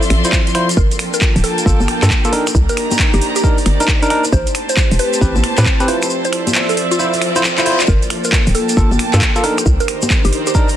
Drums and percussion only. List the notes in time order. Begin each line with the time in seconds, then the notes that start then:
0.02 open hi-hat, shaker
0.10 finger snap, open hi-hat
0.24 closed hi-hat, shaker
0.33 kick, clap, shaker
0.47 closed hi-hat, shaker
0.55 finger snap, open hi-hat
0.69 closed hi-hat, shaker
0.77 kick
0.91 closed hi-hat, shaker
0.99 finger snap, open hi-hat
1.14 closed hi-hat, shaker
1.21 kick, clap, shaker
1.36 open hi-hat, shaker
1.44 open hi-hat
1.58 closed hi-hat, shaker
1.66 kick, shaker
1.80 high conga, shaker
1.88 finger snap, open hi-hat
2.03 clap, closed hi-hat, shaker
2.10 kick, clap, shaker
2.24 closed hi-hat, shaker
2.33 open hi-hat
2.47 finger snap, closed hi-hat, shaker
2.55 kick, shaker
2.69 closed hi-hat, shaker
2.77 finger snap, open hi-hat
2.91 closed hi-hat, high conga, shaker
2.99 kick, clap, shaker
3.13 open hi-hat, shaker
3.21 open hi-hat
3.36 closed hi-hat, shaker
3.44 kick
3.58 open hi-hat, shaker
3.66 finger snap, open hi-hat
3.80 closed hi-hat, shaker
3.88 kick, clap
4.03 closed hi-hat, shaker
4.10 finger snap, open hi-hat
4.24 closed hi-hat, shaker
4.33 kick, shaker
4.47 closed hi-hat, shaker
4.55 finger snap, open hi-hat
4.69 closed hi-hat, shaker
4.77 kick, clap, shaker
4.91 open hi-hat, shaker
4.99 open hi-hat
5.13 closed hi-hat, shaker
5.21 kick, shaker
5.36 high conga, shaker
5.44 finger snap, open hi-hat
5.57 clap, closed hi-hat, shaker
5.65 kick, clap, shaker
5.80 closed hi-hat, shaker
5.88 open hi-hat
6.02 finger snap, closed hi-hat, shaker
6.10 shaker
6.25 closed hi-hat, shaker
6.33 finger snap, open hi-hat
6.47 closed hi-hat, high conga, shaker
6.54 clap, shaker
6.69 open hi-hat, shaker
6.77 open hi-hat
6.91 closed hi-hat, shaker
6.99 shaker
7.13 open hi-hat, shaker
7.22 finger snap, open hi-hat
7.36 closed hi-hat, shaker
7.44 clap, shaker
7.58 clap, closed hi-hat, shaker
7.66 open hi-hat
7.80 clap, closed hi-hat, shaker
7.87 kick, shaker
8.02 closed hi-hat, shaker
8.10 finger snap, open hi-hat
8.24 closed hi-hat, shaker
8.32 kick, clap, shaker
8.47 open hi-hat, shaker
8.55 open hi-hat
8.69 closed hi-hat, shaker
8.77 kick, shaker
8.91 high conga, shaker
8.99 finger snap, open hi-hat
9.14 clap, closed hi-hat, shaker
9.21 kick, clap, shaker
9.36 closed hi-hat, shaker
9.44 open hi-hat
9.58 finger snap, closed hi-hat, shaker
9.66 kick, shaker
9.80 closed hi-hat, shaker
9.88 finger snap, open hi-hat
10.02 closed hi-hat, high conga, shaker
10.10 kick, clap, shaker
10.25 open hi-hat, shaker
10.33 open hi-hat
10.47 closed hi-hat, shaker
10.55 kick, shaker
10.68 open hi-hat, shaker